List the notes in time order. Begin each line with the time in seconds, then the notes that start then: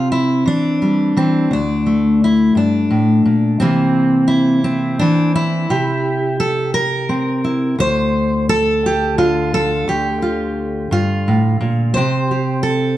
Already playing: C3 C4 F4
0.12 E4
0.45 E3 D4
0.82 G3
1.17 E3 C4
1.51 D2 D4
1.86 A3
2.24 E4
2.55 G2 D4
2.91 A2
3.25 A#2
3.60 C3 E3 A#3 C4
4.28 E4
4.64 C4
4.99 E3 D4
5.36 E4
5.70 C3 G4
6.40 A4
6.74 A#4
7.09 C4
7.44 E4
7.79 D2 C5
8.49 A4
8.86 G4
9.18 D3 F4
9.54 A4
9.88 D2 G4
10.22 F4
10.91 G2 F4
11.28 A2
11.61 A#2
11.94 C3 C4 G4 C5
12.31 G4
12.63 A4